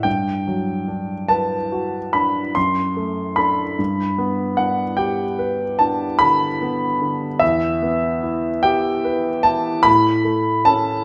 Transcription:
\new Staff \with { instrumentName = "Grand piano" } { \time 9/8 \key g \lydian \tempo 4. = 49 << { g''4. a''4 b''8 c'''4 b''8~ | b''4 fis''8 g''4 a''8 b''4. | e''4. g''4 a''8 b''4 a''8 | } \\ { g,8 fis8 d'8 b'8 fis'8 d'8 fis,8 a8 <d' a'>8 | g,8 b8 d'8 g'8 b'8 d'8 d8 b8 d8 | e,8 b8 e'8 g'8 b'8 e'8 a,8 a8 <cis' a'>8 | } >> }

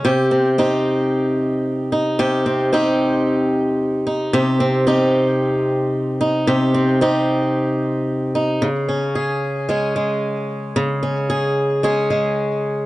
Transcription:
\new Staff \with { instrumentName = "Steel-string acoustic guitar" } { \time 4/4 \key c \phrygian \tempo 4 = 112 <c g'>8 c'8 <c' ees' g'>2~ <c' ees' g'>8 ees'8 | <c g'>8 c'8 <c' ees' g'>2~ <c' ees' g'>8 ees'8 | <c g'>8 c'8 <c' ees' g'>2~ <c' ees' g'>8 ees'8 | <c g'>8 c'8 <c' ees' g'>2~ <c' ees' g'>8 ees'8 |
des8 des'8 aes'4 <aes des' aes'>8 aes4. | des8 des'8 aes'4 <aes des' aes'>8 aes4. | }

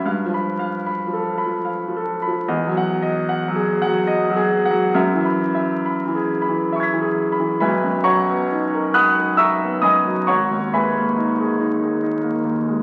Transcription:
<<
  \new Staff \with { instrumentName = "Grand piano" } { \time 3/4 \key b \major \tempo 4 = 69 << { r2. | r2. | r2 <e'' cis''' gis''' b'''>4 | <b' e'' gis'' b''>8 <cis'' fis'' ais'' cis'''>4 <fis'' b'' dis''' fis'''>8 <e'' ais'' cis''' e'''>8 <dis'' gis'' b'' dis'''>8 |
<cis'' fis'' ais'' cis'''>8 <b' e'' gis'' b''>2 r8 | } \\ { \tuplet 3/2 { f''8 b''8 f''8 b''8 a'8 b''8 f''8 a'8 b''8 } | \tuplet 3/2 { dis''8 fis''8 dis''8 fis''8 gis'8 fis''8 dis''8 gis'8 fis''8 } | \tuplet 3/2 { e''8 b''8 e''8 b''8 gis'8 b''8~ b''8 gis'8 b''8 } | r2. |
r2. | } >> }
  \new Staff \with { instrumentName = "Grand piano" } { \clef bass \time 3/4 \key b \major g,16 f8 r8 f8 f8 f8 f16 | e,16 fis8 r8 fis8 fis8 fis8 fis16 | fis,16 e8 r8 e8 e8 e8 e16 | b,,16 fis,16 fis16 b16 dis'16 ais'16 dis'16 ais'16 dis'16 b16 fis,16 fis16 |
gis,,16 dis,16 gis16 ais16 dis'16 gis'16 dis'16 gis'16 dis'16 ais16 dis,16 gis16 | }
>>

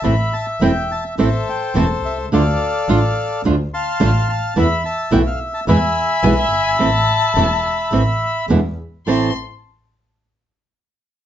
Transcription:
<<
  \new Staff \with { instrumentName = "Violin" } { \time 4/4 \key a \minor \tempo 4 = 107 r1 | r1 | r2. gis''16 e''8 gis''16 | a''2 r2 |
c'''8 r2. r8 | }
  \new Staff \with { instrumentName = "Bandoneon" } { \time 4/4 \key a \minor << { b''8 a''8 g''8 a''8 e''8 g''8 a''8 e''8 | f''2 r8 c'''4 a''8 | b''8 a''8 g''16 f''8 a''16 b''2~ | b''2. r4 |
a''8 r2. r8 | } \\ { e''2 <a' c''>2 | <a' d''>2 r8 <f'' a''>4. | e''2 <e'' gis''>2~ | <e'' gis''>2. r4 |
r1 | } >> }
  \new Staff \with { instrumentName = "Nylon-string guitar" } { \time 4/4 \key a \minor <e a c' e'>8 r8 <e a c' e'>8 r8 <e a c' e'>8 r8 <e a c' e'>8 r8 | <d a d' f'>8 r8 <d a d' f'>8 r8 <d a d' f'>8 r8 <d a d' f'>8 r8 | <e a b e'>8 r8 <e a b e'>8 r8 <b, e gis b e'>8 r8 <b, e gis b e'>8 r8 | <e a c' e'>8 r8 <e a c' e'>8 r8 <e a c' e'>8 r8 <b, d gis b e'>8 r8 |
<a, e a c' e'>8 r2. r8 | }
  \new Staff \with { instrumentName = "Double bass" } { \clef bass \time 4/4 \key a \minor a,,8 r8 e,,8 r8 a,,8 r8 e,,8 c,8 | d,8 r8 a,,8 r8 d,8 r8 a,,8 r8 | e,8 r8 b,,8 r8 e,8 r8 b,,8 g,,8 | a,,8 r8 e,,8 r8 a,,8 r8 e,8 r8 |
a,,8 r2. r8 | }
>>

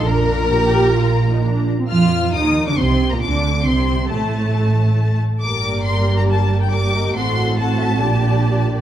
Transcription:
<<
  \new Staff \with { instrumentName = "Violin section" } { \time 4/4 \key bes \major \tempo 4 = 137 bes''2.~ bes''8 r8 | f'''4 ees'''8. d'''16 c'''8. bes''16 d'''4 | c'''4 a''2~ a''8 r8 | d'''4 c'''8. bes''16 a''8. g''16 d'''4 |
c'''4 a''2~ a''8 r8 | }
  \new Staff \with { instrumentName = "Violin section" } { \time 4/4 \key bes \major << { bes'2. r4 | f'4 ees'8. d'16 c'8. bes16 d'4 | c'4 a2~ a8 r8 | d''2. d''8 ees''8 |
fis''4 fis''8 e''8 d''2 | } \\ { r1 | r1 | r1 | bes'2. bes'4 |
a'4 a'4 g'2 | } >> }
  \new Staff \with { instrumentName = "Viola section" } { \time 4/4 \key bes \major <d' bes'>4 g'4 f'8. ees'16 d'8. c'16 | f'4 ees'8. d'16 c'8. bes16 d'4 | c'4 a2~ a8 r8 | <bes g'>2. <bes g'>4 |
<c' fis'>4 <c' fis'>4 <d' g'>2 | }
  \new Staff \with { instrumentName = "Cello section" } { \clef bass \time 4/4 \key bes \major bes,2.~ bes,8 r8 | f4 ees8. d16 c8. bes,16 d4 | c4 a,2~ a,8 r8 | g,1 |
a,2 bes,2 | }
  \new Staff \with { instrumentName = "Double bass section" } { \clef bass \time 4/4 \key bes \major bes,,2.~ bes,,8 r8 | f,4 ees,8. r16 c,8. r16 d,4 | c,4 a,,2~ a,,8 r8 | g,,1 |
a,,2 bes,,2 | }
>>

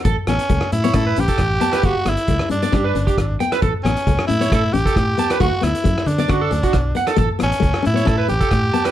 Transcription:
<<
  \new Staff \with { instrumentName = "Clean electric guitar" } { \time 4/4 \key a \mixolydian \tempo 4 = 135 a'16 r4. cis''16 a'16 b'16 r16 a'16 r8 a''16 b'16 | g'16 r4. d''16 g'16 b'16 r16 g'16 r8 g''16 b'16 | a'16 r4. cis''16 a'16 r8 a'16 r8 a''16 b'16 | fis'16 r4. d''16 fis'16 a'16 r16 fis'16 r8 fis''16 a'16 |
a'16 r4. cis''16 a'16 b'16 r16 a'16 r8 a''16 b'16 | }
  \new Staff \with { instrumentName = "Tenor saxophone" } { \time 4/4 \key a \mixolydian r8 cis'4 e'4 g'4. | fis'8 e'4 d'2 r8 | r8 cis'4 e'4 g'4. | fis'8 e'4 d'2 r8 |
r8 cis'4 e'4 g'4. | }
  \new Staff \with { instrumentName = "Steel-string acoustic guitar" } { \time 4/4 \key a \mixolydian r8 b8 a8 cis'16 b16 cis'8 cis'8 r8 b8 | a8 b8 a8 cis'16 b16 cis'8 cis'8 r8 b8 | a8 b8 a8 cis'16 b16 cis'8 cis'8 r8 b8 | a8 b8 a8 cis'16 b16 cis'8 cis'8 r8 b8 |
a8 b8 a8 cis'16 b16 cis'8 cis'8 r8 b8 | }
  \new Staff \with { instrumentName = "Fingered electric bass" } { \clef bass \time 4/4 \key a \mixolydian a,,16 r16 a,,16 r16 cis,16 r16 a,8 a,8 a,,16 r16 a,,8 r8 | g,,16 r16 g,,16 r16 cis,16 r16 g,8 g,8 g,,16 r16 gis,,8 r8 | a,,16 r16 a,,16 r16 cis,16 r16 a,8 a,8 a,,16 r16 a,8 r8 | d,16 r16 d,16 r16 fis,16 r16 d8 d8 d,16 r16 b,,8 r8 |
a,,16 r16 a,,16 r16 cis,16 r16 a,8 a,8 a,,16 r16 a,8 r8 | }
  \new DrumStaff \with { instrumentName = "Drums" } \drummode { \time 4/4 <hh bd>8 <hh ss>16 hh16 <hh bd>16 ss16 hh16 hh16 <hh bd ss>8 hh16 <hh bd>16 <hh bd ss>8 hh16 <hh ss>16 | <hh bd>8 <hh ss>16 hh16 <hh bd>16 ss16 hh16 hh16 <hh bd ss>8 hh16 <hh bd>16 <hh bd ss>8 hh16 <hh ss>16 | <hh bd>8 <hh ss>16 hh16 <hh bd>16 ss16 hh16 hh16 <hh bd ss>8 hh16 <hh bd>16 <hh bd ss>8 hh16 <hh ss>16 | <hh bd>8 <hh ss>16 hh16 <hh bd>16 ss16 hh16 hh16 <hh bd ss>8 hh16 <hh bd>16 <hh bd ss>8 hh16 <hh ss>16 |
<hh bd>8 <hh ss>16 hh16 <hh bd>16 ss16 hh16 hh16 <hh bd ss>8 hh16 <hh bd>16 <hh bd ss>8 hh16 <hh ss>16 | }
>>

